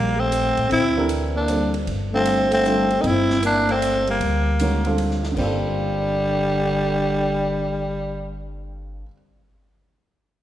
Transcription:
Already playing: upright bass A#1, trombone G3, tenor saxophone A#3
0.18 trombone A3, tenor saxophone C4
0.32 hi-hat pedal, ride
0.57 upright bass A1, ride
0.70 upright bass D2, trombone C4, tenor saxophone E4, ride
0.97 grand piano E3 D4 G4 A4 A#4
1.09 hi-hat pedal, ride
1.34 trombone A#3, tenor saxophone D4
1.48 grand piano D3 G3 C4 F4 A4, hi-hat pedal, ride
1.74 ride
1.87 upright bass G1, ride
2.12 grand piano D3 G3 C4 F4 A4, trombone A3, tenor saxophone C4
2.25 hi-hat pedal, ride
2.51 trombone A3, tenor saxophone C4, ride
2.65 grand piano D3 G3 C4 F4 A4, hi-hat pedal
2.90 ride
2.99 trombone A#3 C4, tenor saxophone D#4
3.04 upright bass G1, tenor saxophone E4, ride
3.30 snare
3.42 trombone A#3, tenor saxophone D4, hi-hat pedal, ride
3.69 trombone A3, tenor saxophone A#3 C4, ride
3.82 hi-hat pedal, ride
4.07 trombone G3, tenor saxophone A#3, ride
4.21 upright bass D2, ride
4.59 grand piano D#3 G#3 C#4 F#4 A#4, hi-hat pedal, ride
4.85 grand piano D3 G3 C4 F4 A4, ride
4.98 ride
5.11 snare
5.23 snare
5.31 grand piano G2 D3
5.36 upright bass G1, trombone D3, tenor saxophone G3, grand piano A#3 C4, kick, crash
5.40 grand piano F4 A4

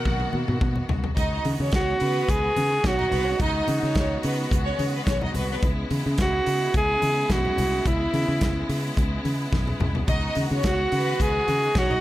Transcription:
Already playing: string section D#3 A#3 B3 F#4, violin section F#4 F#5, alto saxophone A#4
0.05 fingered electric bass B1, kick, high tom, muted conga
0.20 high tom
0.33 fingered electric bass B2, muted conga, high conga
0.48 fingered electric bass B2, mid tom
0.61 fingered electric bass B2, kick, mid tom, high conga
0.76 low conga
0.89 fingered electric bass C2, floor tom, low conga
1.04 floor tom
1.16 fingered electric bass C#2, string section D#3 G#3 B3 F#4, violin section D#4 D#5, kick, closed hi-hat, low conga
1.45 fingered electric bass C#3, open hi-hat, high conga
1.60 fingered electric bass C#3, violin section C#4 C#5, high conga
1.72 fingered electric bass C#2, alto saxophone F#4, kick, snare, closed hi-hat, muted conga
2.00 fingered electric bass C#3, violin section B3 B4, open hi-hat, muted conga
2.29 fingered electric bass C#2, alto saxophone G#4, kick, closed hi-hat
2.56 fingered electric bass C#3, open hi-hat, muted conga, high conga
2.84 fingered electric bass B1, violin section C#4 C#5, alto saxophone F#4, kick, snare, closed hi-hat, muted conga, high conga
2.98 violin section D#4 D#5, low conga
3.11 fingered electric bass C2, violin section B3 B4, open hi-hat, muted conga, low conga
3.26 violin section C#4 C#5
3.38 fingered electric bass C#2, violin section D#4 D#5, alto saxophone D#4, kick, closed hi-hat, low conga
3.68 fingered electric bass C#3, open hi-hat, muted conga, high conga
3.82 fingered electric bass C#3, violin section C#4 C#5, high conga
3.95 fingered electric bass C#2, kick, snare, closed hi-hat, muted conga
4.22 fingered electric bass C#3, violin section B3 B4, open hi-hat, muted conga
4.51 fingered electric bass C#2, kick, closed hi-hat, muted conga
4.65 violin section C#4 C#5
4.79 fingered electric bass C#3, open hi-hat, high conga
4.94 violin section B3 B4
5.06 fingered electric bass B1, violin section C#4 C#5, kick, snare, closed hi-hat, high conga
5.22 violin section D#4 D#5, low conga
5.34 fingered electric bass C2, violin section B3 B4, open hi-hat, muted conga, low conga
5.51 violin section B3 B4
5.62 fingered electric bass C#2, string section C#3 E4, kick, closed hi-hat, low conga
5.91 fingered electric bass C#3, open hi-hat, high conga
6.05 fingered electric bass C#3, high conga
6.18 fingered electric bass C#2, alto saxophone F#4, kick, snare, closed hi-hat, muted conga
6.46 fingered electric bass C#3, open hi-hat
6.74 fingered electric bass C#2, alto saxophone G#4, kick, closed hi-hat, muted conga
7.02 fingered electric bass C#3, open hi-hat, high conga
7.30 fingered electric bass B1, alto saxophone F#4, kick, snare, closed hi-hat, muted conga, high conga
7.45 low conga
7.58 fingered electric bass C2, open hi-hat, low conga
7.86 fingered electric bass C#2, alto saxophone E4, kick, closed hi-hat, low conga
8.14 fingered electric bass C#3, open hi-hat, muted conga, high conga
8.28 fingered electric bass C#3, high conga
8.41 fingered electric bass C#2, kick, snare, closed hi-hat
8.69 fingered electric bass C#3, open hi-hat, muted conga
8.97 fingered electric bass C#2, kick, closed hi-hat
9.25 fingered electric bass C#3, open hi-hat, muted conga, high conga
9.53 fingered electric bass B1, kick, snare, muted conga, high conga
9.67 low conga
9.80 fingered electric bass C2, mid tom, low conga
9.95 floor tom
10.08 fingered electric bass C#2, string section D#3 F#4, violin section D#4 D#5, kick, closed hi-hat, muted conga, low conga
10.35 fingered electric bass C#3, open hi-hat, muted conga, high conga
10.51 fingered electric bass C#3, violin section C#4 C#5, high conga
10.63 fingered electric bass C#2, alto saxophone F#4, kick, snare, closed hi-hat
10.92 fingered electric bass C#3, violin section B3 B4, open hi-hat, muted conga
11.20 fingered electric bass C#2, alto saxophone G#4, kick, closed hi-hat, muted conga
11.48 fingered electric bass C#3, open hi-hat, muted conga, high conga
11.75 fingered electric bass B1, violin section C#4 C#5, alto saxophone F#4, kick, snare, closed hi-hat, high conga
11.90 violin section D#4 D#5, low conga

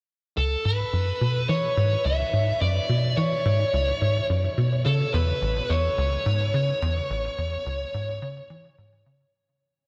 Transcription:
0.37 analog synth bass C#2, lead electric guitar A4
0.65 analog synth bass G#2, lead electric guitar B4
0.93 analog synth bass F#2
1.21 analog synth bass B2
1.49 analog synth bass E3, lead electric guitar C#5
1.77 analog synth bass G#2
2.05 analog synth bass C#2, lead electric guitar E5
2.33 analog synth bass G#2
2.61 analog synth bass F#2, lead electric guitar D5
2.89 analog synth bass B2
3.17 analog synth bass E3, lead electric guitar C#5
3.45 analog synth bass G#2
3.73 analog synth bass C#2
4.01 analog synth bass G#2
4.30 analog synth bass F#2
4.58 analog synth bass B2
4.86 analog synth bass C#3, lead electric guitar A4
5.14 analog synth bass E2, lead electric guitar B4
5.42 analog synth bass A1
5.70 analog synth bass E2, lead electric guitar C#5
5.98 analog synth bass C#2
6.26 analog synth bass G#2
6.54 analog synth bass C#3
6.82 analog synth bass E2
7.10 analog synth bass A1
7.38 analog synth bass E2
7.66 analog synth bass C#2
7.94 analog synth bass G#2
8.22 analog synth bass C#3
8.50 analog synth bass E3
8.78 analog synth bass G#2
9.06 analog synth bass C#3

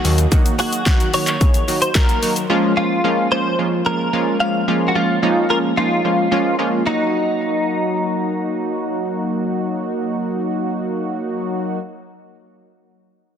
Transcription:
Already playing: clean electric guitar F#4
0.04 analog synth bass D#2, analog polysynth D#3 F#3 A#3 D#4 F#4, open hi-hat, shaker
0.18 closed hi-hat, shaker
0.32 analog polysynth D#3 F#3 A#3 D#4 F#4, kick, closed hi-hat, shaker
0.46 closed hi-hat, shaker
0.59 analog polysynth D#3 F#3 A#3 D#4 G#4, clean electric guitar F#4, open hi-hat, shaker
0.73 closed hi-hat, shaker
0.86 analog polysynth D#3 F#3 A#3 D#4 F#4, kick, snare, clap, closed hi-hat, shaker
1.00 closed hi-hat, shaker
1.13 analog polysynth D#3 F#3 A#3 D#4 F#4, clean electric guitar C#5, open hi-hat, shaker
1.27 clap, closed hi-hat, shaker
1.40 analog polysynth D#3 F#3 A#3 D#4 G#4, kick, closed hi-hat, shaker
1.54 closed hi-hat, shaker
1.68 analog polysynth D#3 F#3 A#3 D#4 F#4, open hi-hat, shaker
1.82 clean electric guitar C5, closed hi-hat, shaker
1.95 analog polysynth D#3 F#3 A#3 D#4 F#4, clean electric guitar A#4, kick, snare, clap, closed hi-hat, shaker
2.09 closed hi-hat, shaker
2.22 analog polysynth D#3 F#3 A#3 D#4 F#4, open hi-hat, shaker
2.36 closed hi-hat, shaker
2.50 analog polysynth F3 G#3 A#3 C#4 F4
2.77 analog polysynth F3 G#3 A#3 C#4 F4, clean electric guitar F4
3.04 analog polysynth F3 G#3 A#3 C#4 F4
3.31 analog polysynth F3 G#3 A#3 C#4 F4, clean electric guitar C5
3.59 analog polysynth F3 G#3 A#3 C#4 F4
3.86 analog polysynth F3 G#3 A#3 C#4 F4, clean electric guitar A#4
4.13 analog polysynth F3 G#3 A#3 C#4 F4
4.40 analog polysynth F3 G#3 A#3 C#4 F4, clean electric guitar F5
4.68 analog polysynth F3 G#3 A#3 C#4 F4
4.88 clean electric guitar F#4
4.95 analog polysynth F3 G#3 A#3 C#4 F4, clean electric guitar F4
5.22 analog polysynth F3 G#3 A#3 C#4 D#4
5.50 analog polysynth F3 G#3 A#3 C#4 F4, clean electric guitar A#4
5.77 analog polysynth F3 G#3 A#3 C#4 D#4, clean electric guitar F4
6.04 analog polysynth F3 G#3 A#3 C#4 F4
6.31 analog polysynth F3 G#3 A#3 C#4 F4
6.59 analog polysynth F3 G#3 A#3 C#4 F4
6.86 analog polysynth F#3 A#3 D#4 F#4, clean electric guitar D#4

